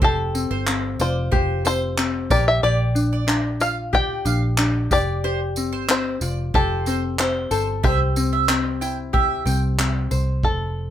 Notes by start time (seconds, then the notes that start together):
Already playing: C4 G4 C5
0.02 F1 G4 A4 C5, kick
0.35 C4, tambourine
0.51 G1 C5
0.67 C4, clap
0.99 F1 F4 C5 D5, tambourine
1.32 F1 G4 C5, kick
1.65 C4 C5, tambourine
1.98 C4, clap
2.30 A#1 G4 A#4 D5, kick, tambourine
2.48 E5
2.63 A#1 G4 D5
2.95 D4, tambourine
3.13 D5
3.27 D4, clap
3.60 F4 F5, tambourine
3.93 G4 D5 G5, kick
4.25 A#1 D4 F5, tambourine
4.58 D4, clap
4.91 F1 G4 D5, kick, tambourine
5.24 G4 C5
5.56 C4, tambourine
5.72 G1 C5
5.89 C4 C5, clap
6.21 F1 F4 D5, tambourine
6.54 F1 G4 A4 C5, kick
6.86 C4 C5, tambourine
7.19 C4 C5, clap
7.51 G1 A4 C5, tambourine
7.83 C2 G4 C5 E5, kick
8.16 C4, tambourine
8.33 E5
8.49 C4, clap
8.81 E4 G5, tambourine
9.13 G4 E5, kick
9.46 C2 C4 G5, tambourine
9.79 C4, clap
10.11 C2 C5, tambourine
10.43 F1 A4, kick